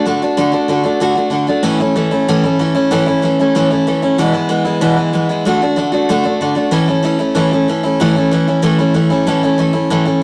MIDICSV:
0, 0, Header, 1, 2, 480
1, 0, Start_track
1, 0, Key_signature, 3, "major"
1, 0, Tempo, 317628
1, 564, Time_signature, 4, 2, 24, 8
1, 15463, End_track
2, 0, Start_track
2, 0, Title_t, "Steel-string acoustic guitar"
2, 0, Program_c, 0, 25
2, 84, Note_on_c, 0, 50, 61
2, 94, Note_on_c, 0, 57, 71
2, 97, Note_on_c, 0, 62, 76
2, 112, Note_on_c, 0, 66, 69
2, 316, Note_off_c, 0, 66, 0
2, 324, Note_off_c, 0, 50, 0
2, 329, Note_off_c, 0, 57, 0
2, 331, Note_off_c, 0, 62, 0
2, 334, Note_on_c, 0, 66, 63
2, 346, Note_on_c, 0, 62, 60
2, 363, Note_on_c, 0, 57, 45
2, 547, Note_off_c, 0, 57, 0
2, 558, Note_off_c, 0, 62, 0
2, 561, Note_on_c, 0, 50, 99
2, 565, Note_off_c, 0, 66, 0
2, 565, Note_on_c, 0, 57, 92
2, 576, Note_on_c, 0, 62, 94
2, 583, Note_on_c, 0, 66, 103
2, 766, Note_off_c, 0, 66, 0
2, 784, Note_off_c, 0, 62, 0
2, 784, Note_on_c, 0, 66, 63
2, 796, Note_off_c, 0, 57, 0
2, 802, Note_off_c, 0, 50, 0
2, 802, Note_on_c, 0, 62, 53
2, 815, Note_on_c, 0, 57, 47
2, 1026, Note_off_c, 0, 57, 0
2, 1031, Note_on_c, 0, 50, 71
2, 1032, Note_off_c, 0, 62, 0
2, 1033, Note_off_c, 0, 66, 0
2, 1044, Note_on_c, 0, 57, 72
2, 1051, Note_on_c, 0, 62, 69
2, 1065, Note_on_c, 0, 66, 76
2, 1244, Note_off_c, 0, 66, 0
2, 1263, Note_off_c, 0, 62, 0
2, 1263, Note_on_c, 0, 66, 59
2, 1275, Note_off_c, 0, 57, 0
2, 1277, Note_off_c, 0, 50, 0
2, 1281, Note_on_c, 0, 62, 54
2, 1293, Note_on_c, 0, 57, 51
2, 1510, Note_off_c, 0, 57, 0
2, 1512, Note_off_c, 0, 66, 0
2, 1515, Note_on_c, 0, 50, 81
2, 1516, Note_off_c, 0, 62, 0
2, 1528, Note_on_c, 0, 57, 87
2, 1534, Note_on_c, 0, 62, 81
2, 1541, Note_on_c, 0, 66, 107
2, 1727, Note_off_c, 0, 66, 0
2, 1745, Note_on_c, 0, 66, 54
2, 1751, Note_off_c, 0, 62, 0
2, 1758, Note_off_c, 0, 50, 0
2, 1765, Note_off_c, 0, 57, 0
2, 1770, Note_on_c, 0, 62, 49
2, 1784, Note_on_c, 0, 57, 50
2, 1960, Note_off_c, 0, 57, 0
2, 1966, Note_on_c, 0, 50, 70
2, 1974, Note_off_c, 0, 62, 0
2, 1978, Note_on_c, 0, 57, 67
2, 1986, Note_off_c, 0, 66, 0
2, 1992, Note_on_c, 0, 62, 67
2, 2005, Note_on_c, 0, 66, 72
2, 2204, Note_off_c, 0, 66, 0
2, 2222, Note_off_c, 0, 62, 0
2, 2223, Note_on_c, 0, 66, 59
2, 2224, Note_off_c, 0, 50, 0
2, 2230, Note_off_c, 0, 57, 0
2, 2240, Note_on_c, 0, 62, 56
2, 2257, Note_on_c, 0, 57, 52
2, 2453, Note_off_c, 0, 57, 0
2, 2460, Note_on_c, 0, 45, 101
2, 2468, Note_off_c, 0, 62, 0
2, 2468, Note_on_c, 0, 52, 85
2, 2471, Note_on_c, 0, 57, 87
2, 2472, Note_off_c, 0, 66, 0
2, 2474, Note_on_c, 0, 61, 101
2, 2480, Note_on_c, 0, 64, 106
2, 2704, Note_off_c, 0, 64, 0
2, 2710, Note_off_c, 0, 45, 0
2, 2715, Note_off_c, 0, 52, 0
2, 2716, Note_off_c, 0, 57, 0
2, 2718, Note_off_c, 0, 61, 0
2, 2722, Note_on_c, 0, 64, 62
2, 2735, Note_on_c, 0, 61, 62
2, 2748, Note_on_c, 0, 57, 52
2, 2940, Note_off_c, 0, 57, 0
2, 2952, Note_off_c, 0, 61, 0
2, 2955, Note_on_c, 0, 52, 68
2, 2959, Note_on_c, 0, 57, 74
2, 2962, Note_off_c, 0, 64, 0
2, 2970, Note_on_c, 0, 61, 82
2, 2981, Note_on_c, 0, 64, 70
2, 3174, Note_off_c, 0, 64, 0
2, 3190, Note_off_c, 0, 61, 0
2, 3192, Note_on_c, 0, 64, 65
2, 3198, Note_off_c, 0, 52, 0
2, 3200, Note_off_c, 0, 57, 0
2, 3208, Note_on_c, 0, 61, 54
2, 3221, Note_on_c, 0, 57, 51
2, 3436, Note_off_c, 0, 57, 0
2, 3436, Note_off_c, 0, 64, 0
2, 3444, Note_off_c, 0, 61, 0
2, 3450, Note_on_c, 0, 45, 90
2, 3455, Note_on_c, 0, 57, 103
2, 3457, Note_on_c, 0, 52, 94
2, 3463, Note_on_c, 0, 64, 92
2, 3468, Note_on_c, 0, 61, 101
2, 3663, Note_off_c, 0, 64, 0
2, 3681, Note_on_c, 0, 64, 65
2, 3685, Note_off_c, 0, 45, 0
2, 3688, Note_off_c, 0, 57, 0
2, 3689, Note_off_c, 0, 52, 0
2, 3689, Note_off_c, 0, 61, 0
2, 3708, Note_on_c, 0, 61, 56
2, 3714, Note_on_c, 0, 57, 50
2, 3904, Note_off_c, 0, 57, 0
2, 3916, Note_off_c, 0, 61, 0
2, 3916, Note_on_c, 0, 52, 60
2, 3921, Note_off_c, 0, 64, 0
2, 3922, Note_on_c, 0, 57, 76
2, 3934, Note_on_c, 0, 61, 77
2, 3952, Note_on_c, 0, 64, 77
2, 4130, Note_off_c, 0, 64, 0
2, 4145, Note_off_c, 0, 61, 0
2, 4149, Note_on_c, 0, 64, 64
2, 4158, Note_off_c, 0, 52, 0
2, 4161, Note_off_c, 0, 57, 0
2, 4164, Note_on_c, 0, 61, 58
2, 4184, Note_on_c, 0, 57, 45
2, 4387, Note_off_c, 0, 57, 0
2, 4392, Note_off_c, 0, 61, 0
2, 4394, Note_off_c, 0, 64, 0
2, 4395, Note_on_c, 0, 45, 90
2, 4397, Note_on_c, 0, 52, 88
2, 4405, Note_on_c, 0, 57, 99
2, 4410, Note_on_c, 0, 61, 103
2, 4423, Note_on_c, 0, 64, 106
2, 4611, Note_off_c, 0, 64, 0
2, 4629, Note_on_c, 0, 64, 66
2, 4633, Note_off_c, 0, 61, 0
2, 4638, Note_off_c, 0, 45, 0
2, 4638, Note_off_c, 0, 52, 0
2, 4643, Note_off_c, 0, 57, 0
2, 4651, Note_on_c, 0, 61, 59
2, 4664, Note_on_c, 0, 57, 49
2, 4868, Note_off_c, 0, 57, 0
2, 4870, Note_on_c, 0, 52, 71
2, 4875, Note_off_c, 0, 64, 0
2, 4876, Note_off_c, 0, 61, 0
2, 4886, Note_on_c, 0, 57, 74
2, 4894, Note_on_c, 0, 61, 73
2, 4911, Note_on_c, 0, 64, 79
2, 5112, Note_off_c, 0, 64, 0
2, 5115, Note_off_c, 0, 52, 0
2, 5123, Note_off_c, 0, 57, 0
2, 5127, Note_off_c, 0, 61, 0
2, 5131, Note_on_c, 0, 64, 58
2, 5146, Note_on_c, 0, 61, 63
2, 5154, Note_on_c, 0, 57, 52
2, 5359, Note_off_c, 0, 57, 0
2, 5360, Note_off_c, 0, 61, 0
2, 5362, Note_on_c, 0, 45, 87
2, 5365, Note_off_c, 0, 64, 0
2, 5369, Note_on_c, 0, 52, 93
2, 5378, Note_on_c, 0, 57, 103
2, 5378, Note_on_c, 0, 61, 99
2, 5386, Note_on_c, 0, 64, 100
2, 5582, Note_off_c, 0, 64, 0
2, 5599, Note_off_c, 0, 61, 0
2, 5600, Note_on_c, 0, 64, 65
2, 5601, Note_off_c, 0, 45, 0
2, 5604, Note_off_c, 0, 52, 0
2, 5608, Note_off_c, 0, 57, 0
2, 5617, Note_on_c, 0, 61, 60
2, 5633, Note_on_c, 0, 57, 49
2, 5838, Note_off_c, 0, 57, 0
2, 5839, Note_off_c, 0, 64, 0
2, 5848, Note_off_c, 0, 61, 0
2, 5848, Note_on_c, 0, 52, 72
2, 5856, Note_on_c, 0, 57, 69
2, 5864, Note_on_c, 0, 61, 71
2, 5870, Note_on_c, 0, 64, 68
2, 6061, Note_off_c, 0, 64, 0
2, 6073, Note_off_c, 0, 61, 0
2, 6079, Note_on_c, 0, 64, 62
2, 6083, Note_off_c, 0, 52, 0
2, 6087, Note_off_c, 0, 57, 0
2, 6091, Note_on_c, 0, 61, 57
2, 6110, Note_on_c, 0, 57, 53
2, 6319, Note_off_c, 0, 64, 0
2, 6320, Note_on_c, 0, 40, 78
2, 6324, Note_on_c, 0, 47, 89
2, 6325, Note_off_c, 0, 61, 0
2, 6327, Note_off_c, 0, 57, 0
2, 6332, Note_on_c, 0, 59, 95
2, 6333, Note_on_c, 0, 52, 91
2, 6333, Note_on_c, 0, 56, 85
2, 6337, Note_on_c, 0, 64, 103
2, 6528, Note_off_c, 0, 64, 0
2, 6542, Note_off_c, 0, 59, 0
2, 6546, Note_off_c, 0, 56, 0
2, 6546, Note_on_c, 0, 64, 67
2, 6559, Note_off_c, 0, 40, 0
2, 6559, Note_off_c, 0, 52, 0
2, 6560, Note_on_c, 0, 59, 57
2, 6561, Note_off_c, 0, 47, 0
2, 6565, Note_on_c, 0, 56, 54
2, 6578, Note_on_c, 0, 52, 43
2, 6765, Note_off_c, 0, 52, 0
2, 6770, Note_off_c, 0, 56, 0
2, 6782, Note_off_c, 0, 59, 0
2, 6783, Note_on_c, 0, 52, 79
2, 6788, Note_on_c, 0, 56, 65
2, 6792, Note_off_c, 0, 64, 0
2, 6800, Note_on_c, 0, 59, 81
2, 6810, Note_on_c, 0, 64, 72
2, 7005, Note_off_c, 0, 64, 0
2, 7016, Note_off_c, 0, 59, 0
2, 7023, Note_on_c, 0, 64, 60
2, 7024, Note_off_c, 0, 56, 0
2, 7030, Note_off_c, 0, 52, 0
2, 7034, Note_on_c, 0, 59, 54
2, 7042, Note_on_c, 0, 56, 51
2, 7053, Note_on_c, 0, 52, 54
2, 7260, Note_off_c, 0, 52, 0
2, 7264, Note_off_c, 0, 56, 0
2, 7269, Note_off_c, 0, 59, 0
2, 7269, Note_on_c, 0, 40, 89
2, 7270, Note_off_c, 0, 64, 0
2, 7272, Note_on_c, 0, 47, 94
2, 7278, Note_on_c, 0, 52, 102
2, 7282, Note_on_c, 0, 56, 83
2, 7287, Note_on_c, 0, 59, 90
2, 7287, Note_on_c, 0, 64, 100
2, 7485, Note_off_c, 0, 64, 0
2, 7497, Note_off_c, 0, 59, 0
2, 7503, Note_on_c, 0, 64, 56
2, 7504, Note_off_c, 0, 56, 0
2, 7513, Note_off_c, 0, 40, 0
2, 7514, Note_off_c, 0, 47, 0
2, 7516, Note_on_c, 0, 59, 53
2, 7517, Note_off_c, 0, 52, 0
2, 7522, Note_on_c, 0, 56, 57
2, 7537, Note_on_c, 0, 52, 50
2, 7736, Note_off_c, 0, 52, 0
2, 7743, Note_off_c, 0, 56, 0
2, 7750, Note_off_c, 0, 64, 0
2, 7754, Note_on_c, 0, 52, 60
2, 7756, Note_off_c, 0, 59, 0
2, 7762, Note_on_c, 0, 56, 74
2, 7778, Note_on_c, 0, 59, 67
2, 7785, Note_on_c, 0, 64, 65
2, 7978, Note_off_c, 0, 64, 0
2, 7988, Note_off_c, 0, 59, 0
2, 7995, Note_off_c, 0, 52, 0
2, 7997, Note_on_c, 0, 64, 64
2, 7999, Note_off_c, 0, 56, 0
2, 8006, Note_on_c, 0, 59, 64
2, 8017, Note_on_c, 0, 56, 54
2, 8029, Note_on_c, 0, 52, 50
2, 8235, Note_off_c, 0, 52, 0
2, 8236, Note_off_c, 0, 64, 0
2, 8241, Note_off_c, 0, 59, 0
2, 8241, Note_on_c, 0, 50, 88
2, 8246, Note_off_c, 0, 56, 0
2, 8255, Note_on_c, 0, 57, 100
2, 8263, Note_on_c, 0, 62, 88
2, 8270, Note_on_c, 0, 66, 103
2, 8471, Note_off_c, 0, 66, 0
2, 8478, Note_off_c, 0, 50, 0
2, 8483, Note_off_c, 0, 62, 0
2, 8485, Note_off_c, 0, 57, 0
2, 8489, Note_on_c, 0, 66, 54
2, 8501, Note_on_c, 0, 62, 57
2, 8515, Note_on_c, 0, 57, 52
2, 8703, Note_off_c, 0, 57, 0
2, 8706, Note_on_c, 0, 50, 76
2, 8712, Note_off_c, 0, 62, 0
2, 8721, Note_on_c, 0, 57, 70
2, 8722, Note_off_c, 0, 66, 0
2, 8730, Note_on_c, 0, 62, 72
2, 8741, Note_on_c, 0, 66, 85
2, 8926, Note_off_c, 0, 66, 0
2, 8944, Note_on_c, 0, 66, 65
2, 8949, Note_off_c, 0, 62, 0
2, 8950, Note_off_c, 0, 50, 0
2, 8958, Note_off_c, 0, 57, 0
2, 8967, Note_on_c, 0, 62, 59
2, 8982, Note_on_c, 0, 57, 47
2, 9189, Note_off_c, 0, 66, 0
2, 9195, Note_off_c, 0, 57, 0
2, 9200, Note_off_c, 0, 62, 0
2, 9203, Note_on_c, 0, 50, 95
2, 9213, Note_on_c, 0, 57, 102
2, 9222, Note_on_c, 0, 62, 99
2, 9230, Note_on_c, 0, 66, 109
2, 9406, Note_off_c, 0, 66, 0
2, 9422, Note_off_c, 0, 62, 0
2, 9424, Note_on_c, 0, 66, 63
2, 9435, Note_off_c, 0, 57, 0
2, 9438, Note_off_c, 0, 50, 0
2, 9440, Note_on_c, 0, 62, 59
2, 9453, Note_on_c, 0, 57, 51
2, 9669, Note_off_c, 0, 57, 0
2, 9669, Note_off_c, 0, 66, 0
2, 9677, Note_off_c, 0, 62, 0
2, 9682, Note_on_c, 0, 50, 58
2, 9687, Note_on_c, 0, 57, 72
2, 9699, Note_on_c, 0, 62, 70
2, 9702, Note_on_c, 0, 66, 70
2, 9879, Note_off_c, 0, 66, 0
2, 9897, Note_off_c, 0, 62, 0
2, 9897, Note_on_c, 0, 66, 63
2, 9911, Note_off_c, 0, 57, 0
2, 9915, Note_on_c, 0, 62, 56
2, 9917, Note_off_c, 0, 50, 0
2, 9929, Note_on_c, 0, 57, 49
2, 10141, Note_off_c, 0, 57, 0
2, 10142, Note_on_c, 0, 45, 95
2, 10145, Note_off_c, 0, 66, 0
2, 10150, Note_on_c, 0, 52, 106
2, 10151, Note_off_c, 0, 62, 0
2, 10157, Note_on_c, 0, 61, 97
2, 10159, Note_on_c, 0, 57, 91
2, 10169, Note_on_c, 0, 64, 105
2, 10376, Note_off_c, 0, 64, 0
2, 10387, Note_off_c, 0, 45, 0
2, 10391, Note_off_c, 0, 52, 0
2, 10394, Note_on_c, 0, 64, 60
2, 10395, Note_off_c, 0, 57, 0
2, 10395, Note_off_c, 0, 61, 0
2, 10410, Note_on_c, 0, 61, 61
2, 10427, Note_on_c, 0, 57, 61
2, 10616, Note_off_c, 0, 57, 0
2, 10618, Note_on_c, 0, 52, 71
2, 10629, Note_off_c, 0, 61, 0
2, 10633, Note_off_c, 0, 64, 0
2, 10634, Note_on_c, 0, 57, 77
2, 10648, Note_on_c, 0, 61, 76
2, 10654, Note_on_c, 0, 64, 84
2, 10847, Note_off_c, 0, 64, 0
2, 10861, Note_off_c, 0, 61, 0
2, 10865, Note_off_c, 0, 52, 0
2, 10865, Note_on_c, 0, 64, 63
2, 10872, Note_off_c, 0, 57, 0
2, 10879, Note_on_c, 0, 61, 57
2, 10890, Note_on_c, 0, 57, 58
2, 11096, Note_off_c, 0, 57, 0
2, 11103, Note_on_c, 0, 45, 89
2, 11105, Note_off_c, 0, 61, 0
2, 11108, Note_off_c, 0, 64, 0
2, 11108, Note_on_c, 0, 52, 94
2, 11114, Note_on_c, 0, 57, 102
2, 11123, Note_on_c, 0, 61, 98
2, 11133, Note_on_c, 0, 64, 92
2, 11334, Note_off_c, 0, 64, 0
2, 11347, Note_off_c, 0, 45, 0
2, 11350, Note_off_c, 0, 52, 0
2, 11352, Note_off_c, 0, 57, 0
2, 11352, Note_on_c, 0, 64, 57
2, 11357, Note_off_c, 0, 61, 0
2, 11380, Note_on_c, 0, 61, 64
2, 11389, Note_on_c, 0, 57, 47
2, 11592, Note_off_c, 0, 64, 0
2, 11606, Note_off_c, 0, 61, 0
2, 11608, Note_on_c, 0, 52, 61
2, 11610, Note_off_c, 0, 57, 0
2, 11625, Note_on_c, 0, 57, 64
2, 11627, Note_on_c, 0, 61, 76
2, 11639, Note_on_c, 0, 64, 75
2, 11821, Note_off_c, 0, 64, 0
2, 11839, Note_off_c, 0, 52, 0
2, 11840, Note_on_c, 0, 64, 62
2, 11842, Note_off_c, 0, 61, 0
2, 11848, Note_off_c, 0, 57, 0
2, 11860, Note_on_c, 0, 61, 59
2, 11881, Note_on_c, 0, 57, 51
2, 12075, Note_off_c, 0, 64, 0
2, 12086, Note_off_c, 0, 61, 0
2, 12088, Note_on_c, 0, 45, 96
2, 12089, Note_off_c, 0, 57, 0
2, 12101, Note_on_c, 0, 52, 92
2, 12107, Note_on_c, 0, 57, 103
2, 12107, Note_on_c, 0, 61, 102
2, 12110, Note_on_c, 0, 64, 105
2, 12315, Note_off_c, 0, 64, 0
2, 12320, Note_off_c, 0, 45, 0
2, 12326, Note_off_c, 0, 52, 0
2, 12329, Note_off_c, 0, 57, 0
2, 12329, Note_off_c, 0, 61, 0
2, 12333, Note_on_c, 0, 64, 72
2, 12352, Note_on_c, 0, 61, 59
2, 12364, Note_on_c, 0, 57, 49
2, 12561, Note_off_c, 0, 57, 0
2, 12563, Note_off_c, 0, 64, 0
2, 12564, Note_on_c, 0, 52, 82
2, 12572, Note_off_c, 0, 61, 0
2, 12579, Note_on_c, 0, 57, 82
2, 12589, Note_on_c, 0, 61, 75
2, 12599, Note_on_c, 0, 64, 72
2, 12790, Note_off_c, 0, 64, 0
2, 12798, Note_off_c, 0, 52, 0
2, 12803, Note_off_c, 0, 61, 0
2, 12806, Note_off_c, 0, 57, 0
2, 12808, Note_on_c, 0, 64, 58
2, 12821, Note_on_c, 0, 61, 58
2, 12833, Note_on_c, 0, 57, 53
2, 13023, Note_off_c, 0, 61, 0
2, 13030, Note_on_c, 0, 45, 91
2, 13031, Note_off_c, 0, 57, 0
2, 13035, Note_off_c, 0, 64, 0
2, 13037, Note_on_c, 0, 52, 103
2, 13041, Note_on_c, 0, 61, 95
2, 13049, Note_on_c, 0, 57, 90
2, 13054, Note_on_c, 0, 64, 100
2, 13262, Note_off_c, 0, 64, 0
2, 13272, Note_off_c, 0, 45, 0
2, 13275, Note_off_c, 0, 52, 0
2, 13277, Note_off_c, 0, 61, 0
2, 13280, Note_on_c, 0, 64, 65
2, 13281, Note_off_c, 0, 57, 0
2, 13298, Note_on_c, 0, 61, 54
2, 13311, Note_on_c, 0, 57, 45
2, 13503, Note_off_c, 0, 57, 0
2, 13510, Note_off_c, 0, 61, 0
2, 13512, Note_on_c, 0, 52, 70
2, 13517, Note_off_c, 0, 64, 0
2, 13521, Note_on_c, 0, 57, 73
2, 13528, Note_on_c, 0, 61, 70
2, 13536, Note_on_c, 0, 64, 73
2, 13734, Note_off_c, 0, 64, 0
2, 13748, Note_off_c, 0, 61, 0
2, 13752, Note_on_c, 0, 64, 70
2, 13754, Note_off_c, 0, 52, 0
2, 13758, Note_off_c, 0, 57, 0
2, 13766, Note_on_c, 0, 61, 56
2, 13784, Note_on_c, 0, 57, 53
2, 13994, Note_off_c, 0, 64, 0
2, 13995, Note_off_c, 0, 57, 0
2, 14001, Note_off_c, 0, 61, 0
2, 14004, Note_on_c, 0, 45, 95
2, 14010, Note_on_c, 0, 52, 83
2, 14013, Note_on_c, 0, 57, 93
2, 14027, Note_on_c, 0, 61, 94
2, 14028, Note_on_c, 0, 64, 97
2, 14233, Note_off_c, 0, 64, 0
2, 14241, Note_off_c, 0, 45, 0
2, 14243, Note_off_c, 0, 52, 0
2, 14245, Note_off_c, 0, 57, 0
2, 14249, Note_off_c, 0, 61, 0
2, 14251, Note_on_c, 0, 64, 59
2, 14267, Note_on_c, 0, 61, 58
2, 14279, Note_on_c, 0, 57, 47
2, 14473, Note_off_c, 0, 57, 0
2, 14476, Note_on_c, 0, 52, 63
2, 14480, Note_off_c, 0, 61, 0
2, 14484, Note_off_c, 0, 64, 0
2, 14491, Note_on_c, 0, 57, 72
2, 14499, Note_on_c, 0, 61, 71
2, 14511, Note_on_c, 0, 64, 75
2, 14687, Note_off_c, 0, 64, 0
2, 14702, Note_off_c, 0, 61, 0
2, 14705, Note_on_c, 0, 64, 65
2, 14717, Note_off_c, 0, 52, 0
2, 14718, Note_off_c, 0, 57, 0
2, 14721, Note_on_c, 0, 61, 52
2, 14736, Note_on_c, 0, 57, 49
2, 14953, Note_off_c, 0, 64, 0
2, 14956, Note_off_c, 0, 61, 0
2, 14957, Note_off_c, 0, 57, 0
2, 14965, Note_on_c, 0, 45, 84
2, 14966, Note_on_c, 0, 52, 91
2, 14974, Note_on_c, 0, 61, 89
2, 14975, Note_on_c, 0, 57, 91
2, 14984, Note_on_c, 0, 64, 95
2, 15173, Note_off_c, 0, 64, 0
2, 15189, Note_off_c, 0, 61, 0
2, 15192, Note_on_c, 0, 64, 60
2, 15203, Note_off_c, 0, 45, 0
2, 15204, Note_off_c, 0, 52, 0
2, 15207, Note_on_c, 0, 61, 58
2, 15208, Note_off_c, 0, 57, 0
2, 15228, Note_on_c, 0, 57, 48
2, 15429, Note_off_c, 0, 57, 0
2, 15437, Note_off_c, 0, 64, 0
2, 15439, Note_off_c, 0, 61, 0
2, 15463, End_track
0, 0, End_of_file